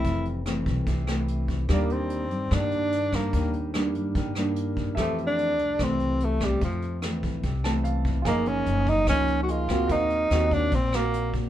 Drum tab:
HH |xxxxxxxx|xxxxxxxx|xxxxxxxx|xxxxxxxx|
SD |--r--r--|r---r--r|--r--r--|r---r--r|
BD |o--oo--o|o---o--o|o---o--o|o---o--o|

HH |xxxxxxxx|xxxxxxxx|xxxxxxxx|
SD |--r--r--|r---r--r|--r--r--|
BD |o--oo--o|o--oo--o|o--oo--o|